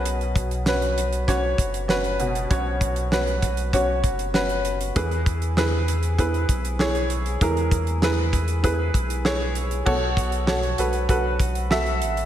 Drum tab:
CC |----------------|----------------|----------------|----------------|
HH |xxxx-xxxx-xx-xxx|x-xx-xxxx-xx-xxx|xxxx--xxxxxx-xxx|xxxx--xxx-xx--xx|
SD |----o---o---o---|----o-------o---|----o-------o---|----o-------o---|
BD |--o-----o-o-----|o-o---o-o-o-----|o-o-----o-o-----|o-o---o-o-o-----|

CC |x---------------|
HH |--xx-xxxx-xx-xxx|
SD |----o-------o---|
BD |o-o-----o-o-----|